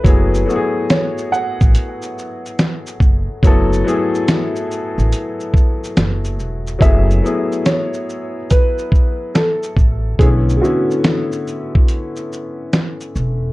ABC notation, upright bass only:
X:1
M:4/4
L:1/16
Q:"Swing 16ths" 1/4=71
K:F#m
V:1 name="Upright bass" clef=bass
F,,,2 z4 z A,,, z6 F,,, z | F,,,2 z4 z A,,, z4 F,,,2 E,,,2 | F,,,2 z12 A,,,2 | B,,,2 z12 E,,,2 |]